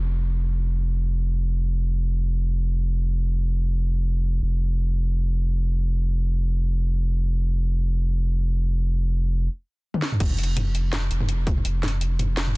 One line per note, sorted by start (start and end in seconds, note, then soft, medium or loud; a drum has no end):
0.00 4.40 F1 medium
4.42 9.48 F1 medium
9.94 high tom soft
10.02 snare medium
10.12 mid tom medium
10.20 11.10 F1 loud
10.20 kick loud
10.20 closed hi-hat medium
10.20 crash loud
10.30 mid tom medium
10.38 closed hi-hat medium
10.43 closed hi-hat medium
10.57 closed hi-hat medium
10.57 mid tom medium
10.75 closed hi-hat medium
10.93 snare loud
10.93 closed hi-hat medium
10.93 mid tom medium
11.11 11.64 F1 loud
11.11 closed hi-hat medium
11.20 mid tom medium
11.29 closed hi-hat medium
11.47 kick loud
11.47 closed hi-hat soft
11.57 mid tom medium
11.65 12.57 F1 loud
11.65 closed hi-hat medium
11.83 snare medium
11.83 closed hi-hat medium
11.83 mid tom medium
11.88 closed hi-hat medium
12.01 closed hi-hat medium
12.19 closed hi-hat medium
12.19 mid tom medium
12.37 snare loud
12.37 closed hi-hat medium
12.47 mid tom medium